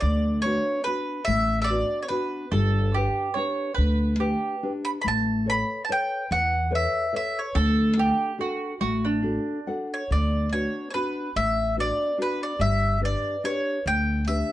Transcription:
0.01 upright bass D2, nylon-string guitar D3, mandolin D5
0.42 nylon-string guitar B3 D4 F#4, mandolin C#5
0.84 nylon-string guitar B3 D4 F#4, mandolin B4
1.25 upright bass A1, nylon-string guitar A3, mandolin E5
1.62 mandolin D5 E5
1.70 nylon-string guitar B3 D4 F#4
2.02 mandolin C#5
2.08 nylon-string guitar B3 D4 F#4, mandolin B4
2.52 upright bass G1, nylon-string guitar G3, mandolin A4
2.94 nylon-string guitar D4 G4 B4, mandolin G4
3.34 nylon-string guitar D4 G4 B4, mandolin C#5
3.74 upright bass D2, nylon-string guitar D3, mandolin B4
4.19 nylon-string guitar D4 G4 B4, mandolin G4
4.63 nylon-string guitar D4 G4 B4
4.85 mandolin B5
5.02 nylon-string guitar A3, mandolin B5
5.06 upright bass A1, mandolin A5
5.46 nylon-string guitar A4 B4 C#5, mandolin B5
5.85 mandolin A5
5.89 nylon-string guitar A4 B4 C#5, mandolin G5
6.31 upright bass E2, nylon-string guitar E3, mandolin F#5
6.70 nylon-string guitar A4 B4 C#5
6.75 mandolin E5
7.13 nylon-string guitar A4 B4 C#5, mandolin E5
7.39 mandolin C#5
7.55 upright bass D2, nylon-string guitar D3, mandolin A4
7.97 nylon-string guitar D4 A4 F#5, mandolin G4
8.38 nylon-string guitar D4 F#4 A4, mandolin F#4
8.81 upright bass A1, nylon-string guitar A3, mandolin F#4
9.05 mandolin D4
9.22 nylon-string guitar D4 F#4 A4
9.67 nylon-string guitar D4 F#4 A4 F#5
9.94 mandolin C#5
10.11 upright bass D2, nylon-string guitar D3, mandolin D5
10.52 nylon-string guitar B3 D4 F#4, mandolin C#5
10.90 mandolin B4 C#5
10.94 nylon-string guitar B3 D4 F#4
11.36 upright bass A1, nylon-string guitar A3, mandolin E5
11.77 nylon-string guitar B3 D4 F#4, mandolin D5
12.18 nylon-string guitar B3 D4 F#4
12.22 mandolin B4
12.43 mandolin D5
12.59 upright bass G1, nylon-string guitar G3, mandolin E5
13.01 nylon-string guitar D4 G4 B4
13.05 mandolin D5
13.44 nylon-string guitar D4 G4 B4, mandolin C#5
13.86 upright bass D2, nylon-string guitar D3, mandolin G5
14.28 nylon-string guitar D4 G4 B4, mandolin E5

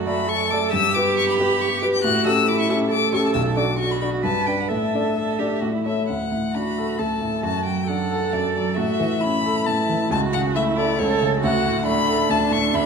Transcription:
Already playing: grand piano F#2 A3 A4 D5, cello F#4
0.06 grand piano A3 A4 D5, violin B5
0.27 cello A4, violin C#6
0.50 grand piano A3 A4 D5, violin D6
0.70 grand piano G2, cello G4, violin E6
0.94 grand piano B3 G4 B4, violin D6
1.17 violin C#6
1.29 violin B5
1.39 grand piano B3 G4 B4, violin B5
1.61 violin C#6
1.82 grand piano B3 G4 B4, violin D6
1.94 violin G6
2.04 grand piano A2, cello F#4, violin F#6
2.25 grand piano C#4 G4 A4, violin E6
2.48 cello E4, violin D6
2.60 violin C#6
2.69 grand piano C#4 G4 A4, violin C#6
2.91 cello A4, violin D6
3.13 grand piano C#4 G4 A4, violin C#6
3.26 violin A5
3.33 grand piano B1, violin E6
3.56 grand piano D4 F#4 D5, violin D6
3.79 cello F#4, violin C#6
3.91 violin B5
4.01 grand piano D4 F#4 D5, violin B5
4.23 grand piano G2, cello B4, violin A5
4.46 grand piano D4 B4 D5, violin G5
4.60 violin F#5
4.69 grand piano A2, cello A4, violin E5
4.94 grand piano D4 A4 D5
5.16 cello A4
5.39 grand piano D4 A4 D5, cello G4
5.61 grand piano A2, cello F#4
5.74 cello E4
5.85 cello E4, grand piano E4 A4 C#5, violin E5
6.09 grand piano D2, violin F#5
6.32 grand piano A2
6.53 grand piano D4, cello F#4, violin B5
6.78 grand piano A4
6.98 grand piano D2, cello A4, violin A5
7.21 grand piano A2
7.43 grand piano F#2, cello F#4, violin A5
7.66 grand piano F#3, violin G5
7.87 grand piano D4, cello A4, violin F#5
8.11 grand piano A4
8.33 grand piano F#2, violin D5
8.55 grand piano F#3, violin D5
8.76 grand piano A2, cello F#4, violin E5
9.00 grand piano E3
9.21 grand piano C#4, cello E4, violin B5
9.46 grand piano A4
9.66 grand piano A2, violin A5
9.89 grand piano E3
10.11 grand piano C#2, cello F#4, violin A5
10.33 grand piano C#3, violin F#5
10.55 grand piano A3, cello E4, violin E5
10.76 grand piano A4, violin D5
10.98 grand piano C#2, cello A4, violin C#5
11.21 grand piano C#3
11.41 grand piano D2, cello F#4, violin F#5
11.66 grand piano A2
11.86 grand piano A3, cello D4, violin B5
12.08 grand piano A4
12.29 grand piano D2, violin A5
12.51 grand piano A2, violin C#6
12.74 grand piano D2, violin B5

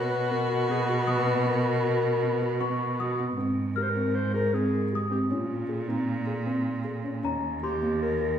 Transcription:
Already playing: cello B2, felt piano F#4, viola F#4
0.06 clarinet B4
0.30 felt piano B3, clarinet A#4
0.50 felt piano F#4
0.68 felt piano B3, clarinet G#4
0.90 clarinet F#4
1.07 felt piano F#4, clarinet B4, celesta D#6
1.26 felt piano B3
1.39 clarinet B4
1.46 felt piano B3, clarinet A#4
1.84 felt piano F#4
2.23 felt piano B3
2.41 felt piano F#4
2.60 felt piano B3, celesta C#6
2.99 felt piano F#4, celesta D#6
3.19 felt piano B3
3.37 cello G#2, felt piano C4
3.75 felt piano G4, clarinet A#4, celesta F6
3.83 clarinet C5
3.90 clarinet A#4
3.96 felt piano C4
4.15 clarinet C5
4.34 felt piano G#4, clarinet A#4
4.53 felt piano C4, clarinet G#4
4.92 felt piano G4, celesta D#6
5.11 felt piano C4, clarinet G4
5.30 cello A#2, felt piano C#4, clarinet F4
5.69 felt piano G#4
5.88 felt piano C4, clarinet D#4
6.27 felt piano G#4
6.46 felt piano C4
6.84 felt piano G#4
7.04 felt piano C#4
7.23 cello D#2, felt piano C#4, celesta A#5
7.62 felt piano G4, clarinet G4, celesta C6
7.82 felt piano A#3
8.02 clarinet A#4
8.21 felt piano G4

